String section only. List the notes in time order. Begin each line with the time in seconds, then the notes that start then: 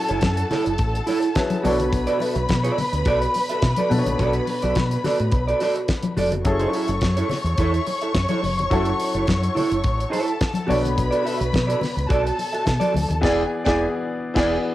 Already playing: A4 A5
1.64 B4 B5
6.44 C#5 C#6
10.13 A4 A5
10.70 B4 B5
12.10 A4 A5
13.22 G#4 G#5
13.65 G#4 G#5
14.36 G#4 G#5